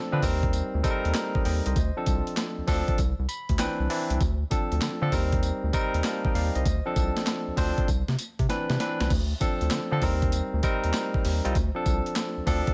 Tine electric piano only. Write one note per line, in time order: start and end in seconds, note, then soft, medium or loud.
0.00 0.12 F3 medium
0.00 0.12 C4 medium
0.00 0.13 D4 medium
0.00 0.24 A4 loud
0.12 0.22 F3 loud
0.12 0.21 C4 medium
0.12 0.23 D4 medium
0.12 0.23 B4 loud
0.22 0.76 G3 medium
0.22 0.76 C4 medium
0.22 0.76 D#4 medium
0.22 0.76 A#4 medium
0.83 1.42 G3 loud
0.83 1.43 C4 medium
0.83 1.43 D#4 medium
0.83 0.93 A4 medium
0.91 1.46 A#4 loud
1.35 1.45 C5 medium
1.35 1.45 D#5 medium
1.45 1.65 D#5 medium
1.45 1.65 G5 medium
1.66 1.95 C5 medium
1.66 1.95 D#5 medium
1.96 2.53 F3 medium
1.96 2.53 C4 medium
1.96 2.53 D4 medium
1.96 2.54 A4 medium
2.67 2.98 F3 medium
2.67 2.98 C4 medium
2.67 2.98 D4 medium
2.67 2.99 A4 loud
3.29 3.57 B5 medium
3.59 3.85 E3 loud
3.59 3.85 C4 medium
3.59 3.85 D4 medium
3.59 3.85 B4 loud
3.59 3.88 G5 medium
3.89 4.20 E3 medium
3.89 4.20 C4 medium
3.89 4.21 D4 medium
3.89 4.21 E4 medium
3.89 4.18 D5 medium
4.50 4.87 F3 medium
4.50 4.87 C4 medium
4.50 4.87 D4 medium
4.50 4.87 A4 loud
5.01 5.12 F3 medium
5.01 5.11 C4 medium
5.01 5.12 D4 medium
5.01 5.13 A4 loud
5.12 5.65 G3 medium
5.12 5.66 C4 medium
5.12 5.66 D#4 medium
5.12 5.66 A#4 medium
5.73 6.32 G3 loud
5.73 6.33 C4 medium
5.73 6.33 D#4 loud
5.73 6.33 A#4 loud
6.04 6.24 F5 medium
6.04 6.24 A5 medium
6.25 6.35 D#5 medium
6.25 6.35 G5 medium
6.35 6.55 D5 medium
6.35 6.54 F5 medium
6.56 6.85 C5 medium
6.56 6.85 D#5 medium
6.85 7.42 F3 medium
6.85 7.43 C4 medium
6.85 7.43 D4 medium
6.85 7.43 A4 loud
7.57 7.88 F3 medium
7.57 7.88 C4 medium
7.57 7.88 D4 medium
7.57 7.88 C5 loud
8.49 8.75 E3 medium
8.49 8.75 C4 medium
8.49 8.75 D4 medium
8.49 8.75 B4 loud
8.79 9.10 E3 medium
8.79 9.10 C4 medium
8.79 9.11 D4 medium
8.79 9.11 B4 medium
9.40 9.77 F3 medium
9.40 9.77 C4 medium
9.40 9.77 D4 medium
9.40 9.77 A4 loud
9.92 10.02 F3 medium
9.92 10.01 C4 medium
9.92 10.02 D4 medium
9.92 10.03 A4 loud
10.02 10.55 G3 medium
10.02 10.55 C4 medium
10.02 10.56 D#4 medium
10.02 10.56 A#4 loud
10.63 11.22 G3 medium
10.63 11.22 C4 medium
10.63 11.22 D#4 medium
10.63 11.23 A#4 loud
11.44 11.55 G3 medium
11.44 11.55 C4 medium
11.44 11.55 D#4 medium
11.44 11.55 F4 loud
11.75 12.32 F3 medium
11.75 12.32 C4 medium
11.75 12.32 D4 medium
11.75 12.33 A4 loud
12.46 12.74 F3 medium
12.46 12.74 C4 medium
12.46 12.74 D4 medium
12.46 12.74 A4 loud